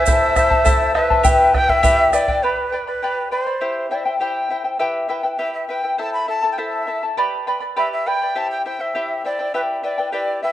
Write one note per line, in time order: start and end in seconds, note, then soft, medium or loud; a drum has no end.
0.00 0.92 C5 medium
0.00 0.91 E5 medium
0.06 0.36 E4 medium
0.06 0.37 A4 medium
0.06 0.36 C5 medium
0.06 0.35 E5 medium
0.06 0.37 A5 medium
0.06 bombo low medium
0.06 shaker loud
0.36 0.50 E4 medium
0.36 0.50 C5 medium
0.36 0.51 E5 medium
0.36 0.49 A5 medium
0.36 bombo rim medium
0.36 bombo low medium
0.36 shaker medium
0.50 0.64 E4 soft
0.50 0.64 C5 medium
0.50 0.64 A5 medium
0.50 bombo low medium
0.64 0.94 E4 medium
0.64 0.95 A4 medium
0.64 0.94 C5 medium
0.64 0.93 E5 medium
0.64 0.94 A5 loud
0.64 bombo low medium
0.64 shaker medium
0.94 1.10 E4 medium
0.94 1.80 B4 medium
0.94 1.09 C5 medium
0.94 1.10 E5 medium
0.94 1.50 E5 medium
0.94 1.09 A5 medium
0.94 bombo rim medium
1.10 1.23 E4 soft
1.10 1.23 C5 soft
1.10 1.24 A5 soft
1.10 bombo low medium
1.23 1.53 E4 medium
1.23 1.54 G4 medium
1.23 1.53 B4 medium
1.23 1.52 E5 medium
1.23 1.54 G5 medium
1.23 bombo low medium
1.23 shaker loud
1.54 1.69 E4 medium
1.54 1.68 B4 medium
1.54 1.69 E5 medium
1.54 1.67 G5 medium
1.54 1.71 G5 loud
1.54 bombo rim medium
1.54 bombo low medium
1.68 1.82 E4 soft
1.68 1.82 B4 medium
1.68 2.13 E5 medium
1.68 1.82 G5 medium
1.68 bombo low medium
1.83 2.12 E4 medium
1.83 2.13 G4 medium
1.83 2.12 B4 loud
1.83 2.11 E5 medium
1.83 2.13 G5 loud
1.83 bombo low medium
1.83 shaker loud
2.13 2.28 E4 medium
2.13 2.27 B4 medium
2.13 2.45 D5 medium
2.13 2.28 E5 medium
2.13 2.27 G5 medium
2.13 bombo rim medium
2.13 shaker medium
2.28 2.43 E4 soft
2.28 2.43 B4 medium
2.28 2.43 G5 medium
2.28 bombo low medium
2.43 2.73 G4 medium
2.43 2.87 B4 medium
2.43 2.72 B4 medium
2.43 2.72 D5 medium
2.43 2.71 G5 medium
2.43 2.73 B5 medium
2.72 2.87 B4 soft
2.72 2.87 D5 soft
2.72 2.87 G5 soft
2.72 2.86 B5 soft
2.87 3.29 B4 medium
2.87 3.02 B4 soft
2.87 3.02 D5 soft
2.87 3.02 B5 soft
3.02 3.32 G4 medium
3.02 3.31 B4 medium
3.02 3.31 D5 medium
3.02 3.30 G5 medium
3.02 3.31 B5 medium
3.31 3.47 B4 soft
3.31 3.87 C5 medium
3.31 3.46 D5 soft
3.31 3.46 G5 soft
3.31 3.45 B5 medium
3.46 3.61 B4 soft
3.46 3.61 D5 soft
3.46 3.61 B5 soft
3.61 3.90 E4 medium
3.61 3.91 G4 medium
3.61 3.90 C5 medium
3.61 3.90 E5 medium
3.61 3.90 G5 medium
3.90 4.06 E4 medium
3.90 4.05 C5 medium
3.90 4.05 D5 medium
3.90 4.06 E5 medium
3.90 4.04 G5 medium
4.04 4.20 E4 soft
4.04 4.20 C5 soft
4.04 4.19 E5 medium
4.04 4.20 G5 soft
4.19 4.49 E4 medium
4.19 4.50 G4 medium
4.19 4.50 C5 medium
4.19 4.49 E5 medium
4.19 4.61 G5 medium
4.19 4.51 G5 medium
4.50 4.64 E4 soft
4.50 4.64 C5 medium
4.50 4.65 E5 soft
4.50 4.63 G5 medium
4.64 4.79 E4 soft
4.64 4.79 C5 soft
4.64 4.79 G5 soft
4.79 5.08 E4 medium
4.79 5.09 G4 medium
4.79 5.08 B4 medium
4.79 5.07 E5 medium
4.79 5.08 G5 medium
5.09 5.23 E4 medium
5.09 5.23 B4 medium
5.09 5.24 E5 medium
5.09 5.22 G5 medium
5.23 5.38 E4 soft
5.23 5.38 B4 soft
5.23 5.38 G5 soft
5.39 5.68 E4 medium
5.39 5.68 G4 medium
5.39 5.69 B4 medium
5.39 5.52 E5 medium
5.39 5.68 E5 medium
5.39 5.69 G5 medium
5.54 5.68 E5 medium
5.68 5.83 E4 soft
5.68 5.83 B4 soft
5.68 5.83 E5 medium
5.68 5.96 G5 medium
5.68 5.82 G5 medium
5.84 5.98 E4 soft
5.84 5.99 B4 soft
5.84 5.98 G5 soft
5.98 6.27 E4 medium
5.98 6.27 A4 medium
5.98 6.28 C5 medium
5.98 6.26 E5 medium
5.98 6.27 A5 medium
5.98 6.13 A5 medium
6.13 6.27 B5 medium
6.28 6.42 E4 soft
6.28 6.42 A4 soft
6.28 6.43 E5 soft
6.28 6.41 A5 medium
6.28 6.50 A5 medium
6.42 6.57 E4 soft
6.42 6.58 A4 soft
6.42 6.57 A5 soft
6.52 6.60 G5 soft
6.58 6.86 E4 medium
6.58 6.87 A4 medium
6.58 6.87 C5 medium
6.58 6.86 E5 medium
6.58 7.03 E5 medium
6.58 6.87 A5 medium
6.87 7.02 E4 soft
6.87 7.02 A4 medium
6.87 7.02 E5 soft
6.87 7.02 A5 soft
7.03 7.17 E4 soft
7.03 7.18 A4 soft
7.03 7.17 A5 soft
7.17 7.47 G4 medium
7.17 7.46 B4 medium
7.17 7.46 D5 medium
7.17 7.46 G5 medium
7.17 7.47 B5 medium
7.47 7.61 B4 medium
7.47 7.60 D5 medium
7.47 7.62 G5 medium
7.47 7.59 B5 medium
7.60 7.76 B4 soft
7.60 7.76 D5 soft
7.60 7.76 B5 soft
7.76 8.06 G4 medium
7.76 8.05 B4 medium
7.76 8.06 D5 medium
7.76 7.91 E5 medium
7.76 8.05 G5 medium
7.76 8.06 B5 medium
7.93 8.09 E5 medium
8.06 8.21 B4 soft
8.06 8.21 D5 soft
8.06 8.21 G5 soft
8.06 8.39 G5 medium
8.06 8.21 B5 soft
8.22 8.35 B4 soft
8.22 8.35 D5 soft
8.22 8.36 B5 soft
8.35 8.64 E4 medium
8.35 8.65 G4 medium
8.35 8.65 C5 medium
8.35 8.64 E5 medium
8.35 8.65 G5 medium
8.35 8.50 A5 medium
8.51 8.65 G5 medium
8.66 8.79 E4 medium
8.66 8.79 C5 soft
8.66 8.80 E5 soft
8.66 8.82 G5 medium
8.66 8.78 G5 medium
8.79 8.94 E4 soft
8.79 8.94 C5 soft
8.79 9.25 E5 medium
8.79 8.95 G5 soft
8.95 9.24 E4 medium
8.95 9.24 G4 medium
8.95 9.24 C5 medium
8.95 9.23 E5 medium
8.95 9.25 G5 medium
9.25 9.39 E4 soft
9.25 9.39 C5 soft
9.25 9.53 D5 medium
9.25 9.39 E5 soft
9.25 9.38 G5 medium
9.39 9.53 E4 soft
9.39 9.54 C5 soft
9.39 9.54 G5 soft
9.54 9.83 E4 medium
9.54 9.84 G4 medium
9.54 9.83 B4 medium
9.54 9.62 B4 medium
9.54 9.82 E5 medium
9.54 9.83 G5 medium
9.83 9.98 E4 medium
9.83 9.98 B4 soft
9.83 10.12 D5 medium
9.83 9.98 E5 soft
9.83 9.97 G5 medium
9.98 10.12 E4 soft
9.98 10.12 B4 soft
9.98 10.12 G5 soft
10.12 10.42 E4 medium
10.12 10.43 G4 medium
10.12 10.43 B4 medium
10.12 10.41 D5 medium
10.12 10.41 E5 medium
10.12 10.43 G5 medium
10.42 10.52 E4 medium
10.42 10.52 B4 medium
10.42 10.52 E5 medium
10.42 10.52 G5 medium